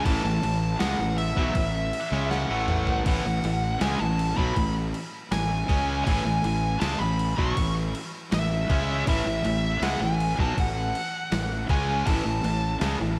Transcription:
0.05 A1 A2 E3 A5, kick, crash
0.23 A1 A2 E3
0.42 A1 A2 E3, crash
0.79 C#2 C#3 G#3 F#5, snare, crash
0.99 A1 A2 E3
1.18 E5, crash
1.37 B1 B2 F#3, kick
1.55 A1 A2 E3, kick, crash
1.93 crash
2.11 C#2 C#3 G#3 C#4
2.31 F#5, snare
2.49 A1 A2 E3 A3
2.68 mid tom
2.87 floor tom
3.06 A1 A2 E3 F#5, kick, crash
3.25 A1 A2 E3
3.44 A1 A2 E3, crash
3.81 C#2 C#3 G#3 G#5, snare, crash
3.99 A1 A2 E3 A5
4.19 crash
4.38 B1 B2 F#3 B5, kick
4.56 A1 A2 E3, kick, crash
4.94 crash
5.31 A1 A2 E3 G#5, snare, crash
5.69 C#2 C#3 G#3 C#4, kick, crash
6.05 A1 A2 E3 G#5, kick, crash
6.25 A1 A2 E3
6.44 A1 A2 E3, crash
6.80 C#2 C#3 G#3 A5, snare, crash
6.99 A1 A2 E3 B5
7.19 crash
7.38 B1 B2 F#3 C#6, kick
7.57 A1 A2 E3, kick, crash
7.95 crash
8.32 A1 A2 E3 E5, snare, crash
8.70 C#2 C#3 G#3 C#4, kick, crash
9.06 A1 A2 E3 E5, kick, crash
9.26 A1 A2 E3
9.44 A1 A2 E3, crash
9.82 C#2 C#3 G#3 F#5, snare, crash
10.00 A1 A2 E3 G#5
10.20 crash
10.39 B1 B2 F#3 A5, kick
10.57 A1 A2 E3 F#5, kick, crash
10.95 crash
11.32 A1 A2 E3, snare, crash
11.69 C#2 C#3 G#3 C#4 G#5, kick, crash
12.06 A1 A2 E3 A5, kick, crash
12.25 A1 A2 E3
12.44 A1 A2 E3, crash
12.81 C#2 C#3 G#3, snare, crash
13.00 A1 A2 E3

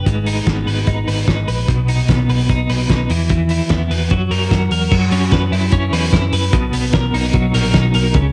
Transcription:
Already playing: D4 G4 B4
0.06 G#1 G#2, kick, closed hi-hat
0.26 D#4, open hi-hat
0.47 G#1 B3, kick, snare, closed hi-hat
0.67 G#1 B4, open hi-hat
0.87 G#1 D#4, kick, closed hi-hat
1.08 G#1 B4, open hi-hat
1.28 G#1 D#4, kick, snare, closed hi-hat
1.48 A#1 B4, open hi-hat
1.68 B1 B2, kick, closed hi-hat
1.88 D#4, open hi-hat
2.08 B1 B3, kick, snare, closed hi-hat
2.29 B1 B4, open hi-hat
2.49 B1 D#4, kick, closed hi-hat
2.69 B1 B4, open hi-hat
2.89 B1 D#4, kick, snare, closed hi-hat
3.10 E2 E3, open hi-hat
3.29 E3, kick, closed hi-hat
3.49 E4, open hi-hat
3.69 E2 B3, kick, snare, closed hi-hat
3.91 E2 B4, open hi-hat
4.10 F#2 F#3, kick, closed hi-hat
4.31 F#2 A#4, open hi-hat
4.51 F#2 F#4, kick, snare, closed hi-hat
4.71 E2 A#4, open hi-hat
4.91 F#2 F#3, kick, crash
5.11 F#2 C#4, open hi-hat
5.32 F#2 B4, kick, snare, closed hi-hat
5.52 F#2 E4, open hi-hat
5.72 F#2 C#4, kick, closed hi-hat
5.92 E2 B4, open hi-hat
6.13 F#2 E4, kick, snare, closed hi-hat
6.33 F#2 B4, open hi-hat
6.53 B1 B2, kick, closed hi-hat
6.73 B1 B3, open hi-hat
6.93 B1 A#4, kick, snare, closed hi-hat
7.14 B1 D#4, open hi-hat
7.33 B1 F#3, kick, closed hi-hat
7.54 A#1 A#4, open hi-hat
7.74 B1 D#4, kick, snare, closed hi-hat
7.94 B1 A#4, open hi-hat
8.14 C#2 C#3, kick, closed hi-hat

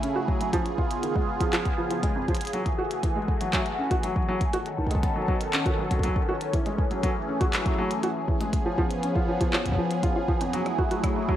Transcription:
Already playing: C#3 A3 E4 G#4
0.03 C#4, closed hi-hat
0.16 F#4
0.28 F#3, kick
0.41 F#3, closed hi-hat
0.53 F3 B3 F4, kick, closed hi-hat
0.66 closed hi-hat
0.78 F4, kick
0.91 closed hi-hat
1.03 D#3, closed hi-hat
1.16 G#3, kick
1.41 F3, kick, closed hi-hat
1.53 F3, clap, closed hi-hat
1.66 kick, closed hi-hat
1.78 F3
1.91 F3, closed hi-hat
2.03 G#3, kick, closed hi-hat
2.16 F2
2.28 F3, kick, closed hi-hat
2.35 closed hi-hat
2.37 closed hi-hat
2.41 closed hi-hat
2.45 closed hi-hat
2.47 closed hi-hat
2.53 E3 F#3 A3 F#4, closed hi-hat
2.66 kick, closed hi-hat
2.78 F#4
2.91 closed hi-hat
3.03 E3, kick, closed hi-hat
3.16 G#3
3.28 kick
3.41 F#3, closed hi-hat
3.53 F#3, kick, clap, closed hi-hat
3.66 closed hi-hat
3.78 C#4
3.91 F#4, kick, closed hi-hat
4.03 F#3, closed hi-hat
4.16 F#3, kick
4.28 F#3
4.41 kick, closed hi-hat
4.53 D#3 B3 C#4 F#4 A4, closed hi-hat
4.66 closed hi-hat
4.78 D#3, kick
4.87 kick
4.91 G#3, closed hi-hat
4.95 kick
5.03 kick, closed hi-hat
5.16 F#3
5.28 F#3, kick
5.41 closed hi-hat
5.53 C#4, clap, closed hi-hat
5.66 F#4, kick, closed hi-hat
5.78 F#3
5.91 F#3, kick, closed hi-hat
5.99 kick
6.03 F#3, closed hi-hat
6.07 kick
6.16 kick
6.28 F#4
6.41 closed hi-hat
6.53 E3 A3 G#4, kick, closed hi-hat
6.66 G#3, closed hi-hat
6.78 kick
6.91 F#3, closed hi-hat
7.03 F#3, kick, closed hi-hat
7.28 C#4
7.41 F#4, kick, closed hi-hat
7.53 F#3, clap, closed hi-hat
7.66 F#3, kick, closed hi-hat
7.78 F#3
7.91 closed hi-hat
8.03 F#4, closed hi-hat
8.28 E3, kick
8.41 G#3, closed hi-hat
8.53 F3 B3 C#4, kick, closed hi-hat
8.66 F3
8.78 F3, kick
8.91 closed hi-hat
9.03 C#4, closed hi-hat
9.16 F4, kick
9.28 F3
9.41 F3, kick, closed hi-hat
9.53 F3, clap
9.66 kick, closed hi-hat
9.69 kick
9.72 kick
9.75 F3, kick
9.91 closed hi-hat
10.03 F4, kick, closed hi-hat
10.16 F4
10.28 F3, kick
10.41 F2, closed hi-hat
10.53 F#3 A3 E4, closed hi-hat
10.66 cross-stick, closed hi-hat
10.78 F#4, kick
10.91 F#4, closed hi-hat
11.03 F#3, kick, cross-stick, closed hi-hat
11.16 F#3
11.28 F#3, kick, cross-stick

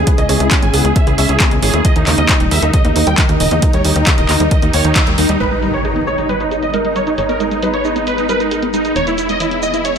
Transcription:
Already playing: C#3 G#3 E4
0.07 A#3 B3 G#4, kick, closed hi-hat
0.18 C#2 G#4 D#5, closed hi-hat
0.29 C#2 G#4 C#5, open hi-hat
0.40 C#2 E4 G#4, closed hi-hat
0.51 C#4 G#4, kick, clap, closed hi-hat
0.62 G#1 C#4 G#5, closed hi-hat
0.73 C#2 B3 G#4, open hi-hat
0.85 C#2 G#4, closed hi-hat
0.96 C#5 E5, kick, closed hi-hat
1.07 C#2 E4 G#4, closed hi-hat
1.18 C#2 C#4 E5, open hi-hat
1.29 C#2 C#4 G#4, closed hi-hat
1.40 B3 G#4, kick, clap, closed hi-hat
1.51 C#2 G#4, closed hi-hat
1.62 G#1 G#4 C#5, open hi-hat
1.74 D#2 E4 G#4, closed hi-hat
1.85 D#3 D#4 G4 A#4 D#5, kick, closed hi-hat
1.96 D#2 D#3 D#4, closed hi-hat
2.07 D#2 C#3 D#4, clap, open hi-hat
2.18 D#2 A#3 D#5, closed hi-hat
2.29 D#4, kick, clap, closed hi-hat
2.40 D#1 G3 D#4, closed hi-hat
2.51 D#2 D#3 E5, open hi-hat
2.62 D#2 D#3 D#4, closed hi-hat
2.73 C#3 D#5, kick, closed hi-hat
2.85 D#2 A#3 D#4, closed hi-hat
2.96 D#2 D#4, open hi-hat
3.07 D#2 G3 G5, closed hi-hat
3.18 D#3 D#4, kick, clap, closed hi-hat
3.29 D#2 D#3 D#4, closed hi-hat
3.40 D#1 C#3 D#5, open hi-hat
3.51 E2 A#3 D#4, closed hi-hat
3.62 D#4, kick, closed hi-hat
3.73 D#2 G3 C#5, closed hi-hat
3.84 D#2 D#3 D#4, open hi-hat
3.96 D#2 D#3 D#4, closed hi-hat
4.07 C#3 D#4, kick, clap, closed hi-hat
4.18 D#1 A#3 D#5, closed hi-hat
4.29 D#2 D#4, clap, open hi-hat
4.40 D#2 G3 D#4, closed hi-hat
4.51 D#3 D#5, kick, closed hi-hat
4.62 D#2 D#3 D#4, closed hi-hat
4.73 D#2 A#3 C#5, open hi-hat
4.85 D#2 D#3 D#4, closed hi-hat
4.96 D#4, kick, clap, closed hi-hat
5.07 D#2 G3, closed hi-hat
5.18 D#2 D#3 D#4, open hi-hat
5.29 D#2 G3 D#4, closed hi-hat
5.40 G#1 G#3 B3 D#4 B4, closed hi-hat, impact, shaker
5.51 G#3 D#4, closed hi-hat, shaker
5.62 G3 D#4, closed hi-hat, shaker
5.74 D#4 C#5, closed hi-hat, shaker
5.85 D#4 G#4, closed hi-hat, shaker
5.96 B3 D#4, closed hi-hat
6.07 G#3 C#5, shaker
6.18 G#3 D#4, closed hi-hat, shaker
6.29 G3 B4, closed hi-hat, shaker
6.40 D#4, closed hi-hat, shaker
6.51 D#4 G#4, closed hi-hat, shaker
6.62 B3 D#5, closed hi-hat, shaker
6.73 G#3 D#4 A#4, closed hi-hat, shaker
6.85 G#3 D#4, closed hi-hat
6.96 G3 C#5, closed hi-hat, shaker
7.07 D#4, closed hi-hat, shaker
7.18 G#1 D#4 G#4 C#5, closed hi-hat, shaker
7.29 B3 A#4, closed hi-hat, shaker
7.40 G#3 D#4, closed hi-hat, shaker
7.51 G#3 D#4, closed hi-hat, shaker
7.62 G3 D#4 B4, closed hi-hat, shaker
7.73 D#4 C#5, closed hi-hat
7.85 D#4 G#4, shaker
7.96 B3 D#4, closed hi-hat, shaker
8.07 G#3 B4, closed hi-hat, shaker
8.18 G#3 D#4, closed hi-hat, shaker
8.29 G3 A#4 B4, closed hi-hat, shaker
8.40 D#4, closed hi-hat, shaker
8.51 D#4 G#4, closed hi-hat, shaker
8.62 B3, closed hi-hat
8.74 G#3 D#4, closed hi-hat, shaker
8.85 G#3 D#4, closed hi-hat, shaker
8.96 E1 D#3 E3 C#4 G#4 C#5, closed hi-hat, shaker
9.07 B3 E4, closed hi-hat, shaker
9.18 E4, closed hi-hat, shaker
9.29 G#3 D#5, closed hi-hat, shaker
9.40 E3 E4, closed hi-hat, shaker
9.51 E3 E4, closed hi-hat
9.63 D#3 D#5, shaker
9.74 B3 E4, closed hi-hat, shaker
9.85 E4 C#5, closed hi-hat, shaker

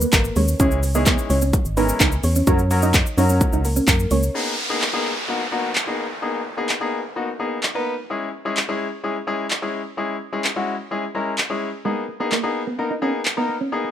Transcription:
0.01 A#3, shaker
0.13 G#1 A#3 A#4, kick, clap, closed hi-hat, shaker
0.24 shaker
0.36 D#2 G#3 C#4 C#5, open hi-hat, shaker
0.48 shaker
0.60 C#2 E3 G#3 C#4 E4 G#4 C#5, kick, closed hi-hat, shaker
0.71 shaker
0.83 muted clean electric guitar stroke, open hi-hat, shaker
0.95 E3 G#3 B3 C#4 D#4 E4 G#4 D#5, shaker
1.06 B3, kick, clap, closed hi-hat, shaker
1.18 shaker
1.30 C#2 C#4 C#5, muted clean electric guitar stroke, open hi-hat, shaker
1.42 C#4, shaker
1.53 kick, closed hi-hat, shaker
1.65 G#1, shaker
1.77 E3 G#3 B3 C#4 D#4 E4 A#4 B4, open hi-hat, shaker
1.89 shaker
2.00 C#2 D#4, kick, clap, closed hi-hat, shaker
2.12 shaker
2.23 E2 C#4 C#5, muted clean electric guitar stroke, open hi-hat, shaker
2.36 C#4, shaker
2.47 F#2 F#3 A#3 C#4 F#4 A#4 C#5, kick, closed hi-hat, shaker
2.59 shaker
2.71 F#3 A#3 C#4 F#4 A#4, muted clean electric guitar stroke, open hi-hat, shaker
2.82 D#4 D#5, shaker
2.94 muted clean electric guitar stroke, kick, clap, closed hi-hat, shaker
3.06 shaker
3.17 F#2 F#3 A#3 C#4 D#4 F#4 A#4 C#5, open hi-hat, shaker
3.29 C#4, shaker
3.41 kick, closed hi-hat, shaker
3.53 C#2 D#4, shaker
3.65 A#3 A#4, muted clean electric guitar stroke, open hi-hat, shaker
3.76 C#4, shaker
3.88 F#2 A#3 A#4, kick, clap, closed hi-hat, shaker
3.99 shaker
4.11 C#2 A#3 C#4 C#5, open hi-hat, shaker
4.23 shaker
4.34 A#3 B3 D#4 G#4, downlifter
4.69 A#3 B3 D#4 G#4
4.82 clap
4.93 A#3 B3 D#4 G#4
5.28 A#3 B3 D#4 F#4
5.52 A#3 B3 D#4 F#4
5.75 clap
5.87 A#3 B3 D#4 G#4
6.22 A#3 B3 D#4 G#4
6.57 A#3 B3 D#4 G#4
6.69 clap
6.81 A#3 B3 D#4 G#4
7.16 A#3 B3 D#4 F#4
7.39 A#3 B3 D#4 G#4
7.63 clap
7.75 A#3 B3 D#4 B4
8.10 G#3 C#4 E4 G#4
8.45 G#3 C#4 E4 G#4
8.57 clap
8.68 G#3 C#4 E4 G#4
9.04 G#3 C#4 E4 G#4
9.27 G#3 C#4 E4 G#4
9.51 clap
9.62 G#3 C#4 E4 G#4
9.97 G#3 C#4 E4 G#4
10.32 G#3 C#4 E4 G#4
10.44 clap
10.56 G#3 C#4 E4 F#4
10.91 G#3 C#4 E4 G#4
11.15 G#3 C#4 E4 A#4
11.38 clap
11.50 G#3 C#4 E4 G#4
11.85 G#3 A#3 B3 D#4 G#4
12.08 muted clean electric guitar stroke
12.20 A#3 B3 D#4 G#4
12.32 A#3, clap
12.43 A#3 B3 D#4 G#4, muted clean electric guitar stroke
12.67 B3
12.78 A#3 B3 D#4 A#4, muted clean electric guitar stroke
12.90 D#4
13.02 A#3 B3 C#4 D#4 G#4
13.25 clap
13.37 A#3 B3 D#4 A#4
13.49 muted clean electric guitar stroke
13.61 C#4
13.72 A#3 B3 D#4 G#4
13.84 muted clean electric guitar stroke

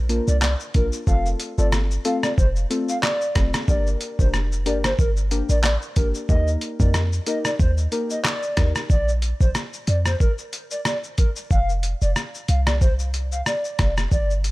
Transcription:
Already playing: A#1
0.09 A#3 D4 F4 A#4, closed hi-hat, shaker
0.27 C2 D5, shaker
0.42 D5, cross-stick, clap, shaker
0.60 shaker
0.74 A#1 A#3 D4 F4 A#4, kick, closed hi-hat, shaker
0.92 shaker
1.07 F1 A3 C4 F4 A4 F5, kick, shaker
1.26 shaker
1.40 closed hi-hat, shaker
1.58 G1 A3 C4 F4 A4 D5, shaker
1.72 cross-stick, shaker
1.91 shaker
2.05 A3 C4 F4 A4 F5, closed hi-hat, shaker
2.23 D5, cross-stick, shaker
2.38 F1 C5, kick, shaker
2.56 shaker
2.70 A3 C4 F4 A4, closed hi-hat, shaker
2.89 F5, shaker
3.03 D5, cross-stick, clap, shaker
3.21 shaker
3.35 F1 A3 C4 F4 A4, kick, cross-stick, closed hi-hat, shaker
3.54 cross-stick, shaker
3.68 G1 A#3 D4 G4 A#4 D5, kick, shaker
3.87 shaker
4.01 closed hi-hat, shaker
4.19 F1 A#3 D4 G4 A#4 C5, kick, shaker
4.34 cross-stick, shaker
4.52 shaker
4.66 G1 A#3 D4 G4 A#4 D5, closed hi-hat, shaker
4.84 C5, cross-stick, shaker
4.98 G1 A#4, kick, shaker
5.17 shaker
5.31 A#3 D4 G4 A#4, closed hi-hat, shaker
5.49 A1 D5, shaker
5.64 D5, cross-stick, clap, shaker
5.82 shaker
5.96 G1 A#3 D4 G4 A#4, kick, closed hi-hat, shaker
6.14 shaker
6.29 D#2 A#3 D#4 G4 A#4 D#5, kick, shaker
6.47 shaker
6.61 closed hi-hat, shaker
6.80 F2 A#3 D#4 G4 A#4 D5, kick, shaker
6.94 cross-stick, shaker
7.13 shaker
7.26 A#3 D#4 G4 A#4 D#5, closed hi-hat, shaker
7.45 D5, cross-stick, shaker
7.59 D#2 C5, kick, shaker
7.77 shaker
7.92 A#3 D#4 G4 A#4, closed hi-hat, shaker
8.10 D#5, shaker
8.25 D5, cross-stick, clap, shaker
8.43 shaker
8.57 D#2 A#3 D#4 G4 A#4, kick, cross-stick, closed hi-hat, shaker
8.75 cross-stick, shaker
8.90 A#1 D5, kick, shaker
9.08 shaker
9.22 closed hi-hat, shaker
9.41 A#1 C5, kick, shaker
9.55 cross-stick, shaker
9.73 shaker
9.87 F2 D5, closed hi-hat, shaker
10.05 C5, cross-stick, shaker
10.20 A#4, kick, shaker
10.38 shaker
10.53 closed hi-hat, shaker
10.71 D5, shaker
10.85 D5, cross-stick, shaker
11.04 shaker
11.18 A#4, kick, closed hi-hat, shaker
11.36 shaker
11.51 F1 F5, kick, shaker
11.69 shaker
11.83 closed hi-hat, shaker
12.02 F1 D5, shaker
12.16 cross-stick, shaker
12.34 shaker
12.48 C2 F5, closed hi-hat, shaker
12.67 D5, cross-stick, shaker
12.81 C5, kick, shaker
12.99 shaker
13.14 closed hi-hat, shaker
13.32 F5, shaker
13.46 D5, cross-stick, shaker
13.64 shaker
13.79 F1, kick, cross-stick, closed hi-hat, shaker
13.97 cross-stick, shaker
14.12 G1 D5, kick, shaker
14.30 shaker
14.44 closed hi-hat, shaker

